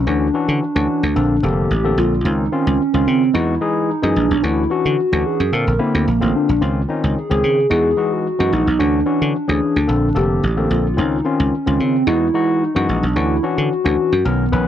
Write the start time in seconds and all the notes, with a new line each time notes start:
0.01 C#4
0.06 D2 E3 C#4 D4 F#4
0.34 E3 C#4 D4 F#4
0.48 D3
0.62 D4
0.75 D2 E3 C#4 D4 F#4
1.03 D2
1.15 A#1 D3 A#3 C4 A4
1.43 F1 D3 A#3 C4 G4 A4
1.71 A1 G4
1.84 D3 A#3 C4 A4
1.98 A#1 F4
2.25 C#2 D#3 C4 C#4 D#4 F4
2.52 D#3 C4 C#4 F4
2.67 C#2
2.93 C#2 D#3 C4 C#4 F4
3.07 C#3 C4
3.33 E2 E3 G#3 D#4 E4 F#4
3.61 E3 G#3 D#4 G#4
3.90 D#4
4.03 F#2 E3 G#3 D#4 G#4
4.16 A#1 D4
4.31 B1
4.43 D2 E3 C#4 D4 E4 F#4
4.70 E3 C#4 D4 F#4
4.85 D3
5.12 D2 E3 C#4 D4 F#4
5.26 G#4
5.40 F#2
5.52 A#2 D3 A#3 C4 A4 A#4
5.67 A#1
5.79 D3 A#3 C4 E4
5.95 D2
6.08 A#1
6.20 A1 D3 A#3 C4 F4
6.36 D4
6.49 A#1
6.61 C#2 D#3 C4 C#4 F4
6.89 D#3 C4 C#4 D#4 F4
7.04 C#2
7.17 G#4
7.30 C#2 D#3 C4 C#4 G#4
7.44 C#3
7.70 E2 E3 G#3 D#4 F#4 G#4
7.97 E3 G#3 D#4 F#4
8.13 F#4
8.39 F#2 E3 G#3 D#4 F#4
8.53 A#1 D#4
8.67 B1
8.79 D2 E3 C#4 D4 F#4
9.06 E3 C#4 D4 F#4
9.22 D3
9.35 D4
9.48 D2 E3 C#4 D4 G#4
9.76 D2
9.87 A#1 D3 A#3 C4 A4
10.15 F1 D3 A#3 C4 G4 A4
10.43 A1
10.57 D3 A#3 C4 A4
10.71 A#1 F4
10.97 C#2 D#3 C4 C#4 D#4 F4
11.25 D#3 C4 C#4 F4
11.40 C#2
11.66 C#2 D#3 C4 C#4 F4
11.80 C#3 C4
12.07 E2 E3 G#3 D#4 E4 F#4
12.34 E3 G#3 D#4 F#4
12.63 D#4
12.75 F#2 E3 G#3 D#4 F#4
12.89 A#1 D4
13.03 B1
13.15 D2 E3 C#4 D4 E4 F#4
13.43 E3 C#4 D4 F#4
13.58 D3
13.84 D2 E3 C#4 D4 F#4
13.99 F#4
14.12 F#2
14.25 B1 D#3 B3 C#4 A#4
14.52 A#1 D#3 B3 C#4 B4